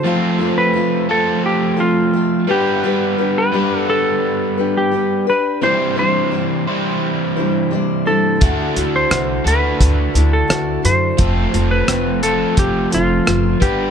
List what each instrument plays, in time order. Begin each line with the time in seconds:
Already playing: electric slide guitar C5
0.04 overdriven electric guitar F3 A3 C4 F4 A4, steel-string acoustic guitar F3 A3 C4 F4 A4
0.39 steel-string acoustic guitar C4 F4 A4
0.58 electric slide guitar B4
0.74 steel-string acoustic guitar A3 C4 F4 A4
1.09 overdriven electric guitar A3 C4 F4 A4, electric slide guitar A4
1.13 overdriven electric guitar F3
1.46 electric slide guitar G4
1.77 steel-string acoustic guitar C4 F4 A4, electric slide guitar F4
2.13 steel-string acoustic guitar A3 C4 F4 A4
2.48 overdriven electric guitar G3 B3 D4, steel-string acoustic guitar D4 G4 B4, electric slide guitar G4
2.52 overdriven electric guitar B4
2.84 steel-string acoustic guitar G3 D4 G4 B4
3.18 steel-string acoustic guitar D4 G4 B4
3.38 electric slide guitar B4
3.52 overdriven electric guitar G3 B3 D4, steel-string acoustic guitar G3 D4 G4
3.56 overdriven electric guitar B4, steel-string acoustic guitar B4
3.80 electric slide guitar A4
3.90 electric slide guitar A4
4.58 steel-string acoustic guitar D4 G4 B4
4.77 electric slide guitar G4
4.91 steel-string acoustic guitar G3 D4 G4 B4
5.27 steel-string acoustic guitar D4 G4 B4, electric slide guitar B4
5.61 steel-string acoustic guitar C3 E3 G3 D4 E4 C5, overdriven electric guitar C3 E3 G3 C4 E4 C5, electric slide guitar C5
5.96 steel-string acoustic guitar G3 D4 E4 C5, electric slide guitar C5
6.32 steel-string acoustic guitar G3 D4 E4 C5
6.68 overdriven electric guitar C3 E3 G3 C4 E4 C5
7.36 steel-string acoustic guitar G3 D4 E4 C5
7.71 steel-string acoustic guitar G3 D4 E4 C5
8.06 steel-string acoustic guitar G3 D4 E4 C5, electric slide guitar A4
8.41 upright bass D2, steel-string acoustic guitar D3 A3 E4 F#4 A4, overdriven electric guitar D3 D4 F#4, kick, closed hi-hat
8.45 overdriven electric guitar A4
8.75 upright bass D2, steel-string acoustic guitar E4 F#4 A4, closed hi-hat
8.96 electric slide guitar C5
9.09 upright bass C2, steel-string acoustic guitar A3 E4 F#4 A4, cross-stick, closed hi-hat
9.45 upright bass D2, overdriven electric guitar D3 D4 F#4 A4, electric slide guitar B4, closed hi-hat
9.81 upright bass D2, kick, closed hi-hat
10.14 upright bass D2, steel-string acoustic guitar E4 F#4 A4, closed hi-hat
10.33 electric slide guitar A4
10.48 upright bass D2, steel-string acoustic guitar A3 E4 F#4 A4, cross-stick, closed hi-hat
10.83 upright bass F#2, steel-string acoustic guitar E4 F#4 A4, electric slide guitar C5, closed hi-hat
11.17 upright bass F1, steel-string acoustic guitar F3 A3 C4 F4 A4, overdriven electric guitar F3 A3 C4 F4, kick, closed hi-hat
11.22 overdriven electric guitar A4
11.52 upright bass F1, steel-string acoustic guitar C4 F4 A4, closed hi-hat
11.71 electric slide guitar B4
11.87 upright bass F1, steel-string acoustic guitar A3 C4 F4 A4, cross-stick, closed hi-hat
12.23 overdriven electric guitar F3 A3 C4 F4 A4, electric slide guitar A4, closed hi-hat
12.57 upright bass F1, electric slide guitar G4, kick, closed hi-hat
12.90 upright bass F1, steel-string acoustic guitar C4 F4 A4, closed hi-hat
12.94 electric slide guitar F4
13.25 upright bass F#1, steel-string acoustic guitar A3 C4 F4 A4, cross-stick, closed hi-hat
13.60 upright bass G1, overdriven electric guitar G3 B3 D4, steel-string acoustic guitar D4 G4 B4, electric slide guitar G4, kick, closed hi-hat
13.64 overdriven electric guitar B4